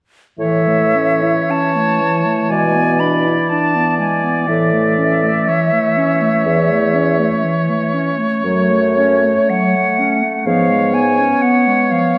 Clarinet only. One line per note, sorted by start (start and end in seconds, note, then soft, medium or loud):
0.39 0.69 E3 soft
0.67 0.97 A3 soft
0.95 1.24 C#4 soft
1.22 1.52 E4 soft
1.50 1.77 C#4 soft
1.76 2.02 A3 soft
2.00 2.26 E3 soft
2.25 2.49 A3 soft
2.50 2.77 G#3 soft
2.75 3.02 B3 soft
3.01 3.28 D4 soft
3.27 3.53 E4 soft
3.52 3.77 D4 soft
3.75 4.01 B3 soft
4.00 4.25 G#3 soft
4.23 4.48 B3 soft
4.48 4.74 E3 soft
4.73 4.99 A3 soft
4.98 5.25 C#4 soft
5.23 5.50 A3 soft
5.48 5.73 E3 soft
5.72 5.99 A3 soft
5.97 6.23 C#4 soft
6.22 6.46 A3 soft
6.46 6.73 E3 soft
6.72 6.96 A3 soft
6.95 7.21 C#4 soft
7.20 7.46 A3 soft
7.44 7.71 E3 soft
7.69 7.95 A3 soft
7.94 8.20 C#4 soft
8.19 8.44 A3 soft
8.45 8.72 F#3 soft
8.71 8.98 A3 soft
8.97 9.26 C#4 soft
9.25 9.51 A3 soft
9.50 9.77 F#3 soft
9.76 10.01 A3 soft
9.99 10.24 C#4 soft
10.23 10.46 A3 soft
10.47 10.72 F3 soft
10.70 10.95 G#3 soft
10.94 11.21 B3 soft
11.19 11.45 C#4 soft
11.43 11.68 B3 soft
11.67 11.93 G#3 soft
11.91 12.17 F3 soft